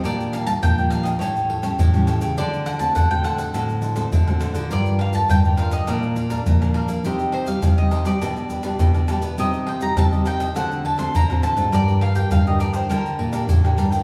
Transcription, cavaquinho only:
X:1
M:4/4
L:1/16
Q:1/4=103
K:Gm
V:1 name="Cavaquinho"
[DBdg]2 [DBdg]3 [Bdg] [DBdg] [Bdg] [GA^cg]2 [GAcg] [GAcg] z [Acg] [GAcg] [Acg] | [DAc^f]2 [DAcf]3 [Acf] [DAcf] [Acf] [DAcf]2 [DAcf] [DAcf] z [Acf] [DAcf] [Acf] | [FBdg]2 [FBdg]3 [Bdg] [FBdg] [Bdg] [DBdf]2 [DBdf] [DBdf] z [Bdf] [DBdf] [Bdf] | [EGce]2 [EGce]3 [Gce] [EGce] [Gce] [DG=Bd]2 [DGBd] [DGBd] z [GBd] [DGBd] [GBd] |
[EGce]2 [EGce]3 [Gce] [EGce] [Gce] [DAc^f]2 [DAcf] [DAcf] z [Acf] [DAcf] [Acf] | [DBdg]2 [DBdg]3 [Bdg] [DBdg] [Bdg] [DBdg]2 [DBdg] [DBdg] z [Bdg] [DBdg] [Bdg] |]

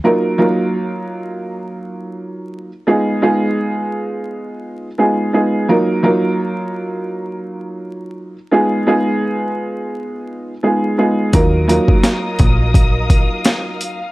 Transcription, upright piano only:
X:1
M:4/4
L:1/8
Q:"Swing 16ths" 1/4=85
K:Ebm
V:1 name="Upright piano"
[G,B,EFB] [G,B,EFB]6 z | [A,CEFA] [A,CEFA]4- [A,CEFA] [A,CEFA] [A,CEFA] | [G,B,EFB] [G,B,EFB]6 z | [A,CEFA] [A,CEFA]4- [A,CEFA] [A,CEFA] [A,CEFA] |
[G,B,EFB] [G,B,EFB]6 z |]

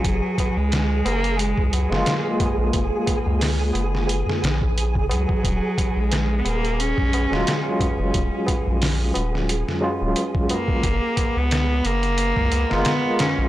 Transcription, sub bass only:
X:1
M:4/4
L:1/16
Q:"Swing 16ths" 1/4=89
K:Gb
V:1 name="Sub bass" clef=bass
G,,, z2 D,,3 G,,,3 D,,2 G,,, z3 B,,, | G,,, z2 D,,3 G,,,3 z B,,,3 G,,, D,, z | E,,, z2 B,,,3 E,,,3 B,,,2 E,,, z3 G,,, | E,,, z2 B,,,3 E,,,3 z2 E,,, z4 |
G,,, z2 D,,3 G,,,3 D,,2 G,,, z3 B,,, |]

